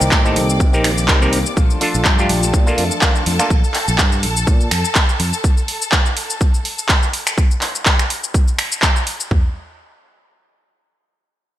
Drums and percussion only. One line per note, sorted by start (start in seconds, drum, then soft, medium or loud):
0.01 shaker medium
0.11 kick loud
0.11 clap loud
0.11 shaker medium
0.25 shaker soft
0.36 open hi-hat loud
0.50 shaker medium
0.60 kick loud
0.60 shaker medium
0.74 shaker soft
0.84 finger snap medium
0.84 open hi-hat loud
0.98 shaker medium
1.08 kick loud
1.08 clap loud
1.08 shaker medium
1.22 shaker soft
1.33 open hi-hat loud
1.46 shaker medium
1.57 kick loud
1.57 shaker medium
1.70 shaker soft
1.81 open hi-hat loud
1.95 shaker medium
2.05 kick loud
2.05 clap loud
2.05 shaker medium
2.19 shaker soft
2.29 open hi-hat loud
2.43 shaker medium
2.54 kick loud
2.54 shaker medium
2.67 shaker soft
2.78 open hi-hat loud
2.91 shaker medium
3.01 kick loud
3.01 clap loud
3.01 shaker medium
3.16 shaker soft
3.26 open hi-hat loud
3.40 finger snap medium
3.40 shaker medium
3.50 kick loud
3.50 shaker medium
3.64 shaker soft
3.74 clap medium
3.74 open hi-hat loud
3.88 shaker medium
3.98 kick loud
3.98 clap loud
3.98 shaker medium
4.12 shaker soft
4.23 open hi-hat loud
4.37 shaker medium
4.47 kick loud
4.47 shaker medium
4.61 shaker soft
4.71 finger snap medium
4.71 open hi-hat loud
4.85 shaker medium
4.95 kick loud
4.95 clap loud
4.95 shaker medium
5.09 shaker soft
5.20 open hi-hat loud
5.33 shaker medium
5.44 kick loud
5.44 shaker medium
5.57 shaker soft
5.68 open hi-hat loud
5.82 shaker medium
5.92 kick loud
5.92 clap loud
5.92 shaker medium
6.06 shaker soft
6.17 open hi-hat loud
6.30 shaker medium
6.41 kick loud
6.41 shaker medium
6.54 shaker soft
6.65 open hi-hat loud
6.79 shaker medium
6.89 kick loud
6.89 clap loud
6.89 shaker medium
7.03 shaker soft
7.13 open hi-hat loud
7.27 finger snap medium
7.27 shaker medium
7.38 kick loud
7.38 shaker medium
7.51 shaker soft
7.61 clap medium
7.61 open hi-hat loud
7.75 shaker medium
7.86 kick loud
7.86 clap loud
7.86 shaker medium
7.99 finger snap medium
7.99 shaker soft
8.10 open hi-hat loud
8.24 shaker medium
8.34 kick loud
8.34 shaker medium
8.48 shaker soft
8.59 finger snap medium
8.59 open hi-hat loud
8.72 shaker medium
8.82 kick loud
8.82 clap loud
8.82 shaker medium
8.96 shaker soft
9.07 open hi-hat loud
9.20 shaker medium
9.31 kick loud
9.31 floor tom loud